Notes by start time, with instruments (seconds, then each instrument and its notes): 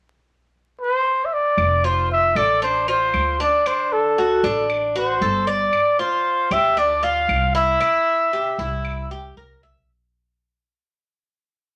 0.82 trumpet C5
1.26 trumpet E5
1.34 trumpet D5
1.57 upright bass F1, claves
1.84 cuban tres F4, trumpet C5
2.12 trumpet E5
2.35 upright bass A1, cuban tres A4, trumpet D5, claves
2.62 cuban tres D4, trumpet C5
2.88 cuban tres F4, trumpet C5
3.14 upright bass D2, claves
3.40 cuban tres D4, trumpet D5
3.66 cuban tres D4, trumpet C5, claves
3.93 trumpet A4
4.18 cuban tres F#4
4.43 upright bass A1, cuban tres D4
4.70 claves
4.96 cuban tres F#4, trumpet C5
5.21 upright bass G1, cuban tres A4
5.47 cuban tres D5, trumpet D5
5.73 claves
5.99 cuban tres F4, trumpet C5
6.51 upright bass D2, cuban tres G4, trumpet E5, claves
6.77 cuban tres D4, trumpet D5
7.03 cuban tres F4, trumpet F5
7.28 upright bass C2, claves
7.55 cuban tres E4, trumpet E5
7.80 cuban tres E4, claves
8.33 cuban tres G4
8.58 upright bass C2, cuban tres E4
8.85 claves
9.11 cuban tres G4
9.37 upright bass C2, cuban tres A#4
9.63 cuban tres E5